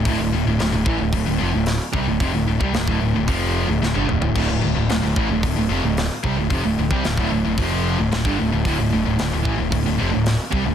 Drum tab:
CC |----------------|----------------|x---------------|----------------|
HH |o---o---o---o---|o---o---o-------|----o---o---o---|o---o---o---o---|
SD |----o-------o---|----o-------o---|----o-------o---|----o-------o---|
T1 |----------------|-------------o--|----------------|----------------|
T2 |----------------|--------------o-|----------------|----------------|
FT |----------------|---------------o|----------------|----------------|
BD |o-----o-o-----o-|o--o-o--o-------|o-----o-o-----o-|o--o-o--o----o--|

CC |----------------|
HH |o---o---o---o---|
SD |----o-------o---|
T1 |----------------|
T2 |----------------|
FT |----------------|
BD |o-----o-o-----o-|